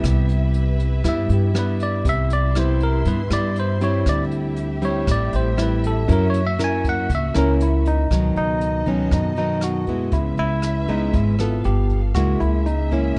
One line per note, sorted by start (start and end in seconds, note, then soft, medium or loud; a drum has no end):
0.00 1.00 C2 medium
0.00 1.02 C3 medium
0.00 0.75 G3 medium
0.00 0.76 B3 medium
0.00 0.76 E4 medium
0.00 6.04 E4 medium
0.00 2.03 B4 medium
0.00 4.02 E5 medium
0.00 kick medium
0.00 cross-stick medium
0.00 closed hi-hat medium
0.29 closed hi-hat soft
0.54 closed hi-hat soft
0.80 closed hi-hat soft
1.04 2.02 G2 medium
1.04 1.28 G2 loud
1.04 1.50 G3 medium
1.04 1.51 B3 medium
1.04 1.51 E4 medium
1.04 kick medium
1.04 cross-stick medium
1.04 closed hi-hat medium
1.09 1.31 E5 medium
1.29 2.01 G2 loud
1.29 closed hi-hat soft
1.33 1.56 G4 medium
1.54 2.51 G3 medium
1.54 2.51 B3 medium
1.54 2.52 E4 medium
1.54 cross-stick medium
1.54 closed hi-hat medium
1.59 1.81 B4 medium
1.80 2.06 D5 medium
1.80 closed hi-hat soft
2.04 3.02 C2 loud
2.04 3.04 C3 medium
2.04 4.04 C6 medium
2.04 kick medium
2.04 closed hi-hat medium
2.09 2.32 E5 loud
2.30 2.56 D5 medium
2.30 closed hi-hat soft
2.55 3.02 G3 medium
2.55 3.02 B3 medium
2.55 3.02 E4 medium
2.55 2.82 C5 medium
2.55 cross-stick medium
2.55 closed hi-hat soft
2.80 3.06 A#4 medium
2.80 closed hi-hat soft
3.05 3.29 G2 medium
3.05 4.04 G2 medium
3.05 3.21 G3 medium
3.05 3.21 B3 medium
3.05 3.21 E4 medium
3.05 3.31 B4 medium
3.05 kick medium
3.05 closed hi-hat medium
3.30 4.02 G2 loud
3.30 3.77 G3 medium
3.30 3.77 B3 medium
3.30 3.78 E4 medium
3.30 3.57 D5 medium
3.30 cross-stick medium
3.30 closed hi-hat soft
3.56 3.82 C5 medium
3.56 closed hi-hat soft
3.81 4.78 G3 medium
3.81 4.78 C4 medium
3.81 4.79 E4 medium
3.81 4.07 C#5 medium
3.81 closed hi-hat soft
4.06 5.03 D2 medium
4.06 5.05 D3 medium
4.06 6.07 G4 medium
4.06 4.24 D5 medium
4.06 8.06 E5 medium
4.06 kick medium
4.06 cross-stick medium
4.06 closed hi-hat medium
4.31 closed hi-hat soft
4.56 closed hi-hat soft
4.82 5.54 G3 medium
4.82 5.54 C4 medium
4.82 5.54 E4 medium
4.82 5.08 C#5 medium
4.82 closed hi-hat soft
5.07 5.31 A1 medium
5.07 6.05 A2 medium
5.07 kick medium
5.07 cross-stick medium
5.07 closed hi-hat medium
5.11 5.34 D5 medium
5.33 6.04 A1 loud
5.33 5.59 C5 medium
5.33 closed hi-hat soft
5.57 6.04 G3 medium
5.57 6.04 C4 medium
5.57 6.04 E4 medium
5.57 cross-stick medium
5.57 closed hi-hat medium
5.62 5.85 B4 medium
5.84 6.10 A4 medium
5.84 closed hi-hat soft
6.08 7.06 F#2 loud
6.08 7.07 F#3 medium
6.08 8.08 A#3 medium
6.08 6.41 C#4 medium
6.08 6.41 E4 medium
6.08 8.08 F#4 medium
6.08 6.41 A#4 medium
6.08 kick medium
6.08 closed hi-hat medium
6.13 6.27 A#4 medium
6.30 6.44 C#5 medium
6.30 closed hi-hat soft
6.47 6.61 E5 medium
6.59 7.09 C#4 medium
6.59 7.09 E4 medium
6.59 7.09 A#4 medium
6.59 cross-stick medium
6.59 closed hi-hat medium
6.64 6.86 G#5 medium
6.84 kick soft
6.84 closed hi-hat soft
6.89 7.11 F#5 medium
7.09 7.33 C#2 medium
7.09 8.08 C#3 medium
7.09 kick medium
7.09 closed hi-hat medium
7.15 7.37 E5 medium
7.34 8.07 C#2 loud
7.34 8.06 C#4 medium
7.34 7.62 C#4 medium
7.34 8.07 E4 medium
7.34 7.37 A4 medium
7.34 8.07 A#4 medium
7.34 cross-stick medium
7.34 closed hi-hat soft
7.39 7.53 A#4 medium
7.60 7.87 E4 medium
7.60 closed hi-hat medium
7.85 8.36 D#4 medium
7.85 closed hi-hat soft
8.09 8.34 C#2 medium
8.09 9.09 B2 medium
8.09 8.82 D#3 medium
8.09 8.83 F#3 medium
8.09 10.10 B3 medium
8.09 8.83 B3 medium
8.09 8.83 D#4 medium
8.09 10.10 A4 medium
8.09 10.10 D#5 medium
8.09 kick medium
8.09 cross-stick medium
8.09 closed hi-hat soft
8.36 9.08 C#2 medium
8.36 8.89 D#4 medium
8.36 closed hi-hat soft
8.61 closed hi-hat soft
8.86 9.33 D#3 medium
8.86 9.33 F#3 medium
8.86 9.33 B3 medium
8.86 9.13 C#4 medium
8.86 9.33 D#4 medium
8.86 kick soft
8.86 closed hi-hat soft
9.11 10.09 F#2 medium
9.11 10.10 B2 medium
9.11 9.36 D#4 medium
9.11 kick medium
9.11 cross-stick medium
9.11 closed hi-hat soft
9.36 9.84 D#3 medium
9.36 9.84 F#3 medium
9.36 9.84 B3 medium
9.36 9.61 D#4 medium
9.36 9.84 D#4 medium
9.36 closed hi-hat soft
9.61 10.15 F#4 medium
9.61 cross-stick medium
9.61 closed hi-hat soft
9.87 10.85 G#3 medium
9.87 10.85 B3 medium
9.87 10.85 E4 medium
9.87 kick soft
9.87 closed hi-hat soft
10.12 10.36 C#2 medium
10.12 11.11 C#3 medium
10.12 11.63 C#4 medium
10.12 10.38 E4 medium
10.12 11.63 B4 medium
10.12 11.63 E5 loud
10.12 kick medium
10.12 closed hi-hat soft
10.37 11.10 C#2 medium
10.37 10.90 E4 medium
10.37 closed hi-hat soft
10.62 cross-stick medium
10.62 closed hi-hat soft
10.88 11.35 G#3 medium
10.88 11.35 B3 medium
10.88 11.15 D#4 medium
10.88 11.35 E4 medium
10.88 kick soft
10.88 closed hi-hat soft
11.13 11.61 G#1 loud
11.13 11.62 G#2 medium
11.13 11.67 E4 medium
11.13 kick medium
11.13 closed hi-hat soft
11.39 12.11 B3 medium
11.39 12.11 F4 medium
11.39 12.12 A4 medium
11.39 cross-stick medium
11.39 closed hi-hat soft
11.63 12.12 G1 loud
11.63 12.14 B3 medium
11.63 12.00 G4 medium
11.63 12.14 A4 medium
11.63 12.14 F5 medium
11.63 closed hi-hat soft
11.90 kick soft
11.90 closed hi-hat soft
12.14 12.38 C#2 medium
12.14 13.14 C#3 medium
12.14 12.66 G#3 medium
12.14 13.19 A#3 medium
12.14 12.66 A#3 medium
12.14 12.66 E4 medium
12.14 12.41 F#4 medium
12.14 13.19 G#4 medium
12.14 13.19 E5 medium
12.14 kick medium
12.14 cross-stick medium
12.14 closed hi-hat soft
12.40 13.12 C#2 medium
12.40 12.66 E4 medium
12.40 closed hi-hat soft
12.66 12.92 D#4 medium
12.66 closed hi-hat soft
12.91 13.19 G#3 medium
12.91 13.19 A#3 medium
12.91 13.15 C#4 medium
12.91 13.19 E4 medium
12.91 kick soft
12.91 closed hi-hat soft